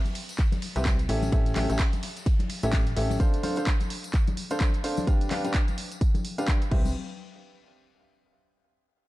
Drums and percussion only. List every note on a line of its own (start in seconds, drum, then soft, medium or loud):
0.05 closed hi-hat medium
0.05 tambourine soft
0.05 high conga medium
0.15 open hi-hat loud
0.15 ride medium
0.29 closed hi-hat soft
0.29 tambourine medium
0.38 kick loud
0.38 clap medium
0.38 closed hi-hat medium
0.38 ride medium
0.38 tambourine medium
0.52 closed hi-hat medium
0.52 tambourine soft
0.52 high conga loud
0.62 open hi-hat loud
0.62 ride medium
0.76 closed hi-hat soft
0.76 tambourine medium
0.85 kick loud
0.85 snare loud
0.85 clap loud
0.85 closed hi-hat medium
0.85 ride medium
0.85 tambourine medium
0.85 high conga medium
0.99 closed hi-hat medium
0.99 tambourine soft
1.09 open hi-hat loud
1.09 ride medium
1.22 tambourine medium
1.22 high conga loud
1.32 kick loud
1.32 closed hi-hat medium
1.32 ride medium
1.46 closed hi-hat medium
1.46 tambourine soft
1.56 clap medium
1.56 open hi-hat loud
1.56 ride medium
1.56 high conga loud
1.70 closed hi-hat soft
1.70 tambourine medium
1.79 kick loud
1.79 snare loud
1.79 clap loud
1.79 closed hi-hat medium
1.79 ride medium
1.79 tambourine medium
1.93 closed hi-hat medium
1.93 tambourine soft
1.93 high conga medium
2.03 snare soft
2.03 open hi-hat loud
2.03 ride medium
2.16 closed hi-hat soft
2.16 tambourine medium
2.26 kick loud
2.26 closed hi-hat medium
2.26 ride medium
2.26 tambourine medium
2.39 closed hi-hat medium
2.39 ride soft
2.39 tambourine soft
2.39 high conga loud
2.49 open hi-hat loud
2.49 ride medium
2.63 closed hi-hat soft
2.63 tambourine medium
2.72 kick loud
2.72 snare loud
2.72 clap loud
2.72 closed hi-hat medium
2.72 ride medium
2.72 tambourine medium
2.72 high conga medium
2.86 closed hi-hat medium
2.86 tambourine soft
2.96 open hi-hat loud
2.96 ride medium
3.10 ride soft
3.10 tambourine medium
3.10 high conga medium
3.20 kick loud
3.20 closed hi-hat medium
3.20 tambourine medium
3.34 closed hi-hat medium
3.34 tambourine soft
3.43 open hi-hat loud
3.43 high conga medium
3.56 closed hi-hat soft
3.56 tambourine medium
3.67 kick loud
3.67 clap loud
3.67 closed hi-hat medium
3.67 tambourine medium
3.80 closed hi-hat soft
3.80 tambourine soft
3.80 high conga medium
3.90 open hi-hat loud
4.04 closed hi-hat soft
4.04 tambourine medium
4.14 kick loud
4.14 clap medium
4.14 closed hi-hat medium
4.14 tambourine medium
4.27 closed hi-hat medium
4.27 tambourine soft
4.27 high conga medium
4.37 open hi-hat loud
4.50 closed hi-hat soft
4.50 tambourine medium
4.60 kick loud
4.60 clap loud
4.60 closed hi-hat medium
4.60 tambourine medium
4.60 high conga medium
4.74 closed hi-hat medium
4.74 tambourine soft
4.84 open hi-hat loud
4.97 tambourine medium
4.97 high conga loud
5.07 kick loud
5.07 closed hi-hat medium
5.07 tambourine medium
5.21 closed hi-hat medium
5.21 tambourine soft
5.31 clap medium
5.31 open hi-hat loud
5.31 high conga medium
5.44 closed hi-hat soft
5.44 tambourine medium
5.54 kick loud
5.54 clap loud
5.54 closed hi-hat medium
5.54 tambourine medium
5.68 closed hi-hat soft
5.68 tambourine soft
5.68 high conga medium
5.78 open hi-hat loud
5.92 closed hi-hat soft
5.92 tambourine medium
6.01 kick loud
6.01 closed hi-hat medium
6.01 tambourine medium
6.15 closed hi-hat soft
6.15 tambourine soft
6.15 high conga loud
6.25 open hi-hat loud
6.38 closed hi-hat soft
6.38 tambourine medium
6.47 kick loud
6.47 clap loud
6.47 closed hi-hat medium
6.47 tambourine medium
6.47 high conga medium
6.62 closed hi-hat soft
6.62 tambourine soft
6.71 kick loud
6.71 crash medium
6.85 tambourine medium
6.85 high conga medium